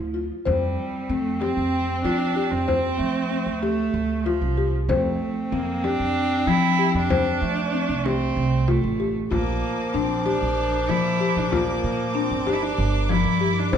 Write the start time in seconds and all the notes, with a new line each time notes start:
Already playing: F3
0.00 D2
0.14 F4
0.45 F2 G3 C4 C5, frame drum
1.09 F2 A3 C4
1.41 C4 G4, frame drum
1.57 F2
2.04 F3 D4 F4, frame drum
2.36 G4
2.52 F2 C4
2.68 C5, frame drum
2.98 F3 A3
3.31 C4
3.46 D2
3.61 A3 G4, frame drum
3.94 D2
4.25 F3 F4, frame drum
4.41 C2
4.57 G4
4.88 F2 A3 C4 C5, frame drum
5.51 F2 A#3 C4
5.84 D4 G4, frame drum
6.00 F2
6.47 F3 E4, frame drum
6.79 G4
6.94 F2 D4
7.10 C5, frame drum
7.42 F3 A3
7.73 C4
7.89 C2
8.06 C4 G4, frame drum
8.36 C2, frame drum
8.68 A3 F4, frame drum
8.83 A1
9.00 G4
9.31 A#1 F3 A#3 F4 A#4 D5 D6, frame drum
9.94 A#1 C4 D4
10.26 D4 G4, frame drum
10.42 A#1
10.89 A#2 F3 E4, frame drum
11.20 G4
11.37 A#1 D4
11.52 A#3 F4, frame drum
11.84 A#2
12.15 C4 D4
12.31 G1
12.47 D4 G4, frame drum
12.54 E4
12.62 D4
12.78 G1
13.09 F3 E4, frame drum
13.25 G2
13.41 G4
13.59 D4
13.72 C2 E3 C5 D5, frame drum